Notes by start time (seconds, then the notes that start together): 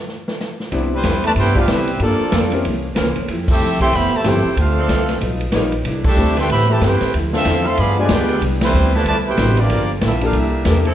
0.08 snare
0.28 snare
0.40 snare, hi-hat pedal
0.60 snare
0.71 C2 C3 G3 B3 C4 D4 E4 G4, ride
0.92 E3 G3 C4 E4 B4 C5
1.03 E2 C3 G3 B3 E4, snare, hi-hat pedal, ride
1.24 A3 F4 B4 D5 A5, ride
1.36 G2 C3 G3 B3 E4 G4 B4 C5 G5, ride
1.40 E4
1.53 C3 G3 B3 F4 G4, kick
1.59 D4 G4 B4 F5
1.68 C3 G3 B3 C4 E4 G4 B4 E5, snare, hi-hat pedal, ride
1.87 ride
2.00 G2 F3 G3 A#3 D4 F4 G4 A4 D5, ride
2.04 A4
2.20 muted upright bass stroke
2.30 F2 G3 A#3 F4 A4, snare, hi-hat pedal, ride
2.35 A4
2.52 C4 C#4 E4 G4 A#4, ride
2.65 C2 C3 E3 A#3 C#4, ride
2.95 C#2 C3 E3 A#3 C4 C#4 A#4, snare, hi-hat pedal, ride
2.99 C#4
3.16 muted upright bass stroke, ride
3.28 F2 F3 A3 E4 G4, ride
3.48 A3 C4 E4 G4 A4 E5, kick, crash
3.61 C2 F3 A3 E4 G4, hi-hat pedal
3.80 E3 F3 A3 C4 E4 G4 A4 E5 G5 C6, kick, ride
3.93 F1 F3 A3 B3 E4 G4 C5 E5 B5, ride
3.97 G4
4.12 C3 E3 A3 G4 C5 E5, muted upright bass stroke
4.16 A5
4.24 G1 F3 A3 C4 E4 F4 G4 A4 C5 G5, snare, hi-hat pedal, ride
4.28 G4
4.44 muted upright bass stroke
4.57 D2 D3 A3 C4 D4 F4 A4 C5 F5, ride
4.77 F3 C4 D4 A4
4.88 C2 D3 A3 C4 F4, snare, hi-hat pedal, ride
5.09 snare, ride
5.21 B1 G3 D#4 F4 B4, ride
5.41 ride
5.52 A#1 G3 B3 D#4 F4 G4 A#4 B4 C#5, snare, hi-hat pedal, ride
5.72 ride
5.85 C2 C3 A3 D4 E4, ride
6.04 G3 A3 D4 E4 G4 A4 E5, kick, crash
6.17 D2 C3 A3 C4 D4 E4 G4 A4, hi-hat pedal
6.28 snare
6.36 G3 A3 C4 G4 A4 B4 E5 G5 C6, snare, ride
6.49 A2 E3 G3 A3 B3 C4 G4 B4 C5 E5 B5, ride
6.68 C3 E3 A3 C4 E4 G4 C5 E5 A5
6.80 G2 A3 C4 E4 G4 B4 C5 G5, snare, hi-hat pedal, ride
7.01 muted upright bass stroke, snare, ride
7.14 D2 D3 F3 C4 E4, ride
7.33 A3 C4 D4 F4 A4 C5 E5, snare
7.45 E2 D3 F3 C4 D4 E4 C5, snare, hi-hat pedal, ride
7.66 F3 A3 C4 A4 E5 F5 C6
7.77 G2 D3 F3 G3 B3 F4 G#4 D5 F5 B5, ride
7.98 D3 F3 G#3 D4 F4 G4 B4 D5 G#5
8.09 D2 G3 G#3 B3 F4 G4 G#4 B4 D5 G5, snare, hi-hat pedal, ride
8.13 D4
8.29 ride
8.41 C2 C3 G3 B3 E4, ride
8.61 E3 G3 C4 E4 B4 C5, snare, ride
8.73 D2 C3 G3 B3 E4, hi-hat pedal
8.84 snare
8.94 G3 A3 C4 E4 F4 B4 D5 A5, snare
9.05 C2 C3 G3 A3 B3 F4 B4 D5 A5, ride
9.09 E4
9.26 B2 E4 G4 B4 C5 G5
9.37 A1 C3 G3 B3 C4 D4 E4 G4 B4, snare, hi-hat pedal, ride
9.57 F3 A#3 D4 F4 G4 D5, ride
9.69 G1 G2 F3 G3 A#3 D4 F4 A#4, ride
10.01 A#1 G2 F3 A#3 C4 D4 E4 A4 E5, snare, hi-hat pedal, ride
10.05 F4
10.21 A#3 D4 E4 F4 G4 A4 F5, ride
10.25 D4 G4 A#4
10.33 C2 C3 G3 A#3 E4 A4, ride
10.37 A#3 D4 E4 G4 A#4 E5
10.65 E2 C3 A#3 D4 E4 G4 A4 A#4, snare, hi-hat pedal, ride
10.85 F3 C4 E4 A4, ride